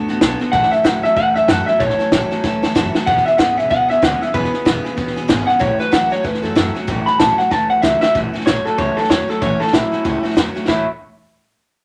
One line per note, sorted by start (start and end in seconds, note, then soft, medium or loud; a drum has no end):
0.00 0.18 D3 medium
0.00 0.19 A3 loud
0.08 0.18 A2 medium
0.08 0.21 B3 medium
0.08 0.21 F#4 medium
0.08 0.21 A4 medium
0.08 snare soft
0.21 0.35 B1 loud
0.21 0.38 D3 medium
0.21 0.40 D3 medium
0.21 0.40 F#3 medium
0.21 0.38 B3 medium
0.21 0.40 B3 medium
0.21 0.39 F#4 loud
0.21 0.38 A4 loud
0.21 kick loud
0.21 snare loud
0.21 hi-hat pedal medium
0.40 0.51 D3 medium
0.40 0.52 B3 medium
0.40 0.53 B3 soft
0.40 0.53 F#4 medium
0.40 0.53 A4 medium
0.40 muted upright bass stroke medium
0.40 snare soft
0.52 0.67 A1 loud
0.52 0.82 A2 medium
0.52 0.72 A2 medium
0.52 0.72 E3 medium
0.52 0.82 E3 medium
0.52 0.72 F#3 medium
0.52 0.71 A3 medium
0.52 0.70 C#4 medium
0.52 0.70 A4 medium
0.52 0.71 F#5 loud
0.52 kick loud
0.52 snare soft
0.63 snare soft
0.71 0.83 F#3 soft
0.71 0.83 A3 medium
0.71 0.84 C#4 medium
0.71 0.84 A4 medium
0.71 0.84 E5 loud
0.71 muted upright bass stroke medium
0.71 snare soft
0.84 0.99 C#2 loud
0.84 1.03 A2 medium
0.84 1.02 A2 medium
0.84 1.03 E3 medium
0.84 1.04 F#3 medium
0.84 1.02 F#3 loud
0.84 1.03 A3 medium
0.84 1.02 C#4 medium
0.84 1.02 A4 medium
0.84 1.03 F#5 loud
0.84 kick medium
0.84 snare loud
0.84 hi-hat pedal medium
1.03 1.13 E2 loud
1.03 1.15 A2 medium
1.03 1.15 F#3 medium
1.03 1.15 F#3 soft
1.03 1.15 A3 soft
1.03 1.16 C#4 medium
1.03 1.16 A4 medium
1.03 1.16 E5 loud
1.03 snare soft
1.16 1.31 E2 loud
1.16 1.46 A2 medium
1.16 1.46 E3 medium
1.16 1.35 F#3 medium
1.16 1.35 A3 medium
1.16 1.35 C#4 medium
1.16 1.34 A4 medium
1.16 1.35 F#5 loud
1.16 kick loud
1.16 snare soft
1.35 1.45 F#2 loud
1.35 1.48 F#3 soft
1.35 1.48 A3 medium
1.35 1.48 C#4 medium
1.35 1.48 A4 medium
1.35 1.48 E5 loud
1.35 snare soft
1.48 1.63 F#2 medium
1.48 1.67 A2 medium
1.48 1.66 A2 medium
1.48 1.67 E3 medium
1.48 1.68 F#3 medium
1.48 1.66 F#3 medium
1.48 1.67 A3 medium
1.48 1.67 C#4 loud
1.48 1.67 A4 medium
1.48 1.66 F#5 loud
1.48 kick loud
1.48 snare loud
1.48 hi-hat pedal loud
1.66 1.79 A2 medium
1.66 1.79 F#3 medium
1.66 1.79 F#3 soft
1.66 1.79 A3 medium
1.66 1.80 C#4 medium
1.66 1.80 A4 medium
1.66 1.79 E5 medium
1.66 muted upright bass stroke medium
1.66 snare soft
1.80 1.94 A1 loud
1.80 1.99 A2 medium
1.80 2.09 A2 medium
1.80 1.99 E3 medium
1.80 2.10 E3 medium
1.80 1.99 F#3 medium
1.80 1.99 A3 medium
1.80 1.98 C#4 medium
1.80 1.98 A4 medium
1.80 2.72 C#5 loud
1.80 kick loud
1.80 snare soft
1.90 snare soft
1.99 2.12 F#3 soft
1.99 2.12 A3 medium
1.99 2.12 C#4 medium
1.99 2.12 A4 medium
1.99 muted upright bass stroke medium
1.99 snare soft
2.12 2.26 A1 loud
2.12 2.29 A2 medium
2.12 2.31 A2 medium
2.12 2.31 E3 medium
2.12 2.29 F#3 medium
2.12 2.31 F#3 medium
2.12 2.31 A3 medium
2.12 2.30 C#4 medium
2.12 2.30 A4 medium
2.12 kick medium
2.12 snare loud
2.12 hi-hat pedal medium
2.31 2.42 A2 medium
2.31 2.43 F#3 loud
2.31 2.42 F#3 soft
2.31 2.43 A3 soft
2.31 2.44 C#4 medium
2.31 2.43 A4 medium
2.31 muted upright bass stroke medium
2.31 snare soft
2.43 2.58 D2 loud
2.43 2.73 A2 medium
2.43 2.73 E3 medium
2.43 2.62 F#3 medium
2.43 2.62 A3 medium
2.43 2.62 C#4 medium
2.43 2.61 A4 medium
2.43 kick loud
2.43 snare medium
2.62 2.72 E2 medium
2.62 2.74 F#3 medium
2.62 2.74 A3 medium
2.62 2.75 C#4 medium
2.62 2.75 A4 medium
2.62 snare medium
2.75 2.90 F#1 medium
2.75 2.94 A2 medium
2.75 2.92 A2 medium
2.75 2.94 E3 medium
2.75 2.94 F#3 medium
2.75 2.93 F#3 medium
2.75 2.94 A3 loud
2.75 2.93 C#4 medium
2.75 2.92 A4 loud
2.75 kick loud
2.75 snare loud
2.75 hi-hat pedal loud
2.93 3.06 A2 medium
2.93 3.06 F#3 medium
2.93 3.07 F#3 medium
2.93 3.07 A3 medium
2.93 3.07 C#4 medium
2.93 3.06 A4 medium
2.93 muted upright bass stroke medium
2.93 snare medium
3.06 3.22 E1 loud
3.06 3.36 E2 medium
3.06 3.36 B2 medium
3.06 3.26 E3 medium
3.06 3.26 G#3 medium
3.06 3.26 B3 medium
3.06 3.25 C#4 medium
3.06 3.25 G#4 medium
3.06 3.25 F#5 loud
3.06 kick loud
3.06 snare soft
3.17 snare soft
3.26 3.38 B3 soft
3.26 3.38 C#4 soft
3.26 3.38 G#4 medium
3.26 3.38 E5 loud
3.26 muted upright bass stroke medium
3.26 snare soft
3.38 3.53 G#1 loud
3.38 3.56 E2 medium
3.38 3.56 C#3 medium
3.38 3.57 E3 medium
3.38 3.58 G#3 medium
3.38 3.58 B3 medium
3.38 3.57 C#4 medium
3.38 3.56 G#4 medium
3.38 3.57 F#5 medium
3.38 kick medium
3.38 snare loud
3.38 hi-hat pedal medium
3.57 3.67 B1 loud
3.57 3.69 E2 medium
3.57 3.69 C#3 medium
3.57 3.70 B3 soft
3.57 3.70 C#4 soft
3.57 3.70 G#4 soft
3.57 3.70 E5 loud
3.57 snare soft
3.70 3.85 B1 medium
3.70 4.00 E2 medium
3.70 4.00 B2 medium
3.70 3.89 G#3 medium
3.70 3.89 B3 medium
3.70 3.88 C#4 medium
3.70 3.88 G#4 medium
3.70 3.89 F#5 loud
3.70 kick loud
3.70 snare soft
3.89 3.99 C#2 medium
3.89 4.01 B3 soft
3.89 4.02 C#4 medium
3.89 4.02 G#4 medium
3.89 4.03 E5 medium
3.89 snare soft
4.02 4.17 D2 medium
4.02 4.19 E2 medium
4.02 4.20 C#3 loud
4.02 4.21 E3 medium
4.02 4.21 G#3 medium
4.02 4.22 B3 medium
4.02 4.21 C#4 medium
4.02 4.20 G#4 medium
4.02 4.22 F#5 loud
4.02 kick loud
4.02 snare loud
4.02 hi-hat pedal loud
4.21 4.32 E2 medium
4.21 4.33 C#3 medium
4.21 4.33 B3 soft
4.21 4.34 C#4 soft
4.21 4.34 G#4 medium
4.21 4.34 E5 loud
4.21 muted upright bass stroke medium
4.21 snare soft
4.34 4.49 E1 medium
4.34 4.63 E2 medium
4.34 4.63 B2 medium
4.34 4.53 E3 medium
4.34 4.53 G#3 medium
4.34 4.53 B3 medium
4.34 4.52 C#4 medium
4.34 4.51 G#4 medium
4.34 5.27 B4 loud
4.34 kick loud
4.34 snare soft
4.44 snare soft
4.52 4.65 B3 soft
4.52 4.65 C#4 soft
4.52 4.66 G#4 soft
4.52 muted upright bass stroke medium
4.52 snare soft
4.65 4.80 E1 loud
4.65 4.83 E2 medium
4.65 4.83 C#3 medium
4.65 4.85 E3 medium
4.65 4.85 G#3 medium
4.65 4.85 B3 medium
4.65 4.84 C#4 medium
4.65 4.83 G#4 medium
4.65 kick medium
4.65 snare loud
4.65 hi-hat pedal medium
4.84 4.95 E2 medium
4.84 4.96 C#3 medium
4.84 4.97 B3 soft
4.84 4.97 C#4 medium
4.84 4.97 G#4 medium
4.84 muted upright bass stroke medium
4.84 snare soft
4.97 5.12 A1 loud
4.97 5.26 E2 medium
4.97 5.27 B2 medium
4.97 5.16 G#3 medium
4.97 5.17 B3 medium
4.97 5.16 C#4 medium
4.97 5.15 G#4 medium
4.97 kick loud
4.97 snare soft
5.07 snare soft
5.16 5.26 B1 medium
5.16 5.27 B3 medium
5.16 5.28 C#4 medium
5.16 5.28 G#4 medium
5.16 snare soft
5.28 5.44 G#1 loud
5.28 5.46 E2 medium
5.28 5.46 C#3 loud
5.28 5.48 E3 medium
5.28 5.48 G#3 medium
5.28 5.48 B3 loud
5.28 5.47 C#4 loud
5.28 5.46 G#4 loud
5.28 kick medium
5.28 snare loud
5.28 hi-hat pedal medium
5.47 5.59 E2 medium
5.47 5.60 C#3 medium
5.47 5.60 B3 soft
5.47 5.59 C#4 medium
5.47 5.60 G#4 medium
5.47 5.60 F#5 loud
5.47 muted upright bass stroke medium
5.47 snare soft
5.59 5.75 A1 loud
5.59 5.79 A2 medium
5.59 5.90 A2 medium
5.59 5.79 E3 medium
5.59 5.90 E3 medium
5.59 5.79 F#3 medium
5.59 5.79 A3 medium
5.59 5.78 C#4 medium
5.59 5.78 F#4 medium
5.59 5.79 C#5 loud
5.59 kick loud
5.59 snare soft
5.79 5.91 F#3 soft
5.79 5.91 A3 soft
5.79 5.91 C#4 soft
5.79 5.91 F#4 medium
5.79 5.92 B4 loud
5.79 muted upright bass stroke medium
5.79 snare soft
5.91 6.07 C#2 loud
5.91 6.11 A2 medium
5.91 6.10 A2 medium
5.91 6.11 E3 medium
5.91 6.11 F#3 medium
5.91 6.10 F#3 medium
5.91 6.10 A3 medium
5.91 6.10 C#4 medium
5.91 6.09 F#4 medium
5.91 6.11 F#5 medium
5.91 kick medium
5.91 snare loud
5.91 hi-hat pedal medium
6.10 6.21 E2 medium
6.10 6.23 A2 medium
6.10 6.22 F#3 soft
6.10 6.24 F#3 medium
6.10 6.22 A3 soft
6.10 6.23 C#4 soft
6.10 6.23 F#4 medium
6.10 6.24 C#5 loud
6.10 snare soft
6.23 6.39 E2 loud
6.23 6.54 A2 medium
6.23 6.54 E3 loud
6.23 6.42 F#3 medium
6.23 6.42 A3 medium
6.23 6.42 C#4 medium
6.23 6.41 F#4 medium
6.23 6.43 B4 loud
6.23 kick loud
6.23 snare soft
6.34 snare soft
6.42 6.53 F#2 loud
6.42 6.54 F#3 medium
6.42 6.55 A3 medium
6.42 6.55 C#4 medium
6.42 6.55 F#4 medium
6.42 6.74 A4 loud
6.42 snare soft
6.55 6.71 F#2 medium
6.55 6.75 A2 medium
6.55 6.73 A2 medium
6.55 6.75 E3 medium
6.55 6.75 F#3 medium
6.55 6.73 F#3 loud
6.55 6.74 A3 medium
6.55 6.74 C#4 medium
6.55 6.73 F#4 medium
6.55 kick loud
6.55 snare loud
6.55 hi-hat pedal loud
6.75 6.87 A2 medium
6.75 6.87 F#3 medium
6.75 6.87 F#3 soft
6.75 6.87 A3 medium
6.75 6.87 C#4 soft
6.75 6.87 F#4 medium
6.75 muted upright bass stroke medium
6.75 snare soft
6.87 7.03 A1 medium
6.87 7.07 A2 medium
6.87 7.17 A2 medium
6.87 7.07 E3 loud
6.87 7.17 E3 medium
6.87 7.07 F#3 medium
6.87 7.07 A3 medium
6.87 7.06 C#4 loud
6.87 7.06 F#4 loud
6.87 kick loud
6.87 snare soft
7.06 7.19 F#3 soft
7.06 7.19 A3 soft
7.06 7.20 C#4 medium
7.06 7.20 F#4 medium
7.06 7.19 B5 loud
7.06 muted upright bass stroke medium
7.06 snare soft
7.19 7.34 A1 medium
7.19 7.36 A2 medium
7.19 7.39 A2 medium
7.19 7.39 E3 medium
7.19 7.37 F#3 medium
7.19 7.39 F#3 medium
7.19 7.38 A3 medium
7.19 7.38 C#4 medium
7.19 7.37 F#4 medium
7.19 7.38 A5 loud
7.19 kick medium
7.19 snare loud
7.19 hi-hat pedal medium
7.38 7.49 A2 medium
7.38 7.50 F#3 loud
7.38 7.49 F#3 soft
7.38 7.50 A3 soft
7.38 7.51 C#4 medium
7.38 7.51 F#4 medium
7.38 7.51 F#5 medium
7.38 muted upright bass stroke medium
7.38 snare soft
7.50 7.66 D2 loud
7.50 7.80 A2 medium
7.50 7.81 E3 loud
7.50 7.70 F#3 medium
7.50 7.70 A3 medium
7.50 7.69 C#4 medium
7.50 7.69 F#4 medium
7.50 7.69 A5 loud
7.50 kick loud
7.50 snare medium
7.70 7.80 E2 medium
7.70 7.82 F#3 soft
7.70 7.82 A3 soft
7.70 7.82 C#4 medium
7.70 7.83 F#4 medium
7.70 7.82 F#5 loud
7.82 7.98 C#2 medium
7.82 8.02 A2 medium
7.82 8.00 A2 medium
7.82 8.02 E3 medium
7.82 8.00 F#3 loud
7.82 8.02 F#3 medium
7.82 8.02 A3 medium
7.82 8.01 C#4 medium
7.82 8.00 F#4 medium
7.82 8.00 E5 loud
7.82 kick loud
7.82 snare loud
7.82 hi-hat pedal loud
8.01 8.13 A2 medium
8.01 8.13 F#3 medium
8.01 8.14 F#3 soft
8.01 8.14 A3 soft
8.01 8.14 C#4 soft
8.01 8.15 F#4 medium
8.01 8.14 E5 loud
8.01 muted upright bass stroke medium
8.01 snare medium
8.14 8.33 A1 loud
8.14 8.32 A2 medium
8.14 8.34 A2 medium
8.14 8.34 E3 medium
8.14 8.32 E3 medium
8.14 8.34 F#3 medium
8.14 8.33 A3 medium
8.14 8.33 C#4 medium
8.14 8.32 F#4 medium
8.14 kick loud
8.14 snare soft
8.33 8.45 A2 medium
8.33 8.45 E3 medium
8.33 8.45 F#3 soft
8.33 8.46 A3 medium
8.33 8.46 C#4 medium
8.33 8.46 F#4 medium
8.33 muted upright bass stroke medium
8.33 snare soft
8.41 snare soft
8.46 8.64 A1 loud
8.46 8.63 A2 medium
8.46 8.65 F#3 medium
8.46 8.64 F#3 medium
8.46 8.65 A3 medium
8.46 8.65 C#4 medium
8.46 8.64 F#4 medium
8.46 8.65 C#5 loud
8.46 snare loud
8.46 hi-hat pedal medium
8.65 8.77 A2 medium
8.65 8.77 F#3 loud
8.65 8.77 F#3 soft
8.65 8.77 A3 soft
8.65 8.78 C#4 medium
8.65 8.78 F#4 medium
8.65 8.78 A4 medium
8.65 muted upright bass stroke medium
8.65 snare soft
8.78 8.96 C#2 medium
8.78 8.97 A2 medium
8.78 8.95 A2 medium
8.78 8.97 E3 medium
8.78 8.96 E3 medium
8.78 8.97 F#3 medium
8.78 8.97 A3 medium
8.78 8.96 C#4 medium
8.78 8.96 F#4 medium
8.78 8.97 C#5 loud
8.78 kick loud
8.78 snare soft
8.97 9.09 A2 medium
8.97 9.09 E3 medium
8.97 9.07 F#3 soft
8.97 9.08 A3 soft
8.97 9.09 C#4 medium
8.97 9.10 F#4 medium
8.97 9.09 A4 medium
8.97 muted upright bass stroke medium
8.97 snare soft
9.04 snare soft
9.09 9.27 E2 medium
9.09 9.27 A2 medium
9.09 9.28 F#3 medium
9.09 9.27 F#3 medium
9.09 9.28 A3 medium
9.09 9.28 C#4 medium
9.09 9.28 C#5 medium
9.09 snare loud
9.09 hi-hat pedal medium
9.28 9.40 A2 medium
9.28 9.40 F#3 medium
9.28 9.41 F#3 soft
9.28 9.41 A3 medium
9.28 9.41 C#4 medium
9.28 9.41 F#4 medium
9.28 9.42 A4 medium
9.28 muted upright bass stroke medium
9.28 snare soft
9.41 9.59 A1 medium
9.41 9.59 A2 medium
9.41 9.61 A2 medium
9.41 9.61 E3 medium
9.41 9.59 E3 medium
9.41 9.61 F#3 medium
9.41 9.60 A3 medium
9.41 9.59 C#4 loud
9.41 9.58 F#4 loud
9.41 9.60 C#5 loud
9.41 kick loud
9.41 snare soft
9.60 9.72 A2 medium
9.60 9.72 E3 medium
9.60 9.71 F#3 soft
9.60 9.72 A3 soft
9.60 9.73 C#4 medium
9.60 9.73 F#4 medium
9.60 9.73 A4 medium
9.60 muted upright bass stroke medium
9.60 snare soft
9.67 snare soft
9.72 9.90 A1 medium
9.72 9.90 A2 medium
9.72 9.92 F#3 medium
9.72 9.90 F#3 medium
9.72 9.92 A3 medium
9.72 9.91 C#4 medium
9.72 10.35 E4 medium
9.72 9.90 F#4 medium
9.72 snare loud
9.72 hi-hat pedal medium
9.92 10.03 A2 medium
9.92 10.04 F#3 medium
9.92 10.04 F#3 soft
9.92 10.04 A3 soft
9.92 10.04 C#4 medium
9.92 10.05 F#4 medium
9.92 muted upright bass stroke medium
9.92 snare soft
10.04 10.22 C#2 medium
10.04 10.22 A2 medium
10.04 10.24 A2 medium
10.04 10.24 E3 medium
10.04 10.22 E3 loud
10.04 10.24 F#3 medium
10.04 10.23 A3 medium
10.04 10.23 C#4 medium
10.04 10.22 F#4 medium
10.04 kick loud
10.04 snare soft
10.23 10.35 A2 medium
10.23 10.35 E3 medium
10.23 10.34 F#3 medium
10.23 10.35 A3 medium
10.23 10.36 C#4 medium
10.23 10.36 F#4 medium
10.23 muted upright bass stroke medium
10.23 snare soft
10.30 snare soft
10.35 10.54 E2 medium
10.35 10.53 A2 medium
10.35 10.55 F#3 medium
10.35 10.54 F#3 medium
10.35 10.54 A3 medium
10.35 10.54 C#4 medium
10.35 10.53 F#4 medium
10.35 snare loud
10.35 hi-hat pedal loud
10.55 10.67 A2 medium
10.55 10.67 F#3 medium
10.55 10.67 F#3 soft
10.55 10.68 A3 medium
10.55 10.68 C#4 medium
10.55 10.68 F#4 medium
10.55 muted upright bass stroke medium
10.55 snare soft
10.67 10.86 A1 loud
10.67 10.83 A2 medium
10.67 10.83 E3 medium
10.67 10.84 F#3 medium
10.67 10.83 A3 medium
10.67 10.84 A3 medium
10.67 10.84 C#4 medium
10.67 10.86 E4 medium
10.67 10.84 E4 loud
10.67 10.84 F#4 medium
10.67 10.84 C#5 loud
10.67 kick loud
10.67 snare loud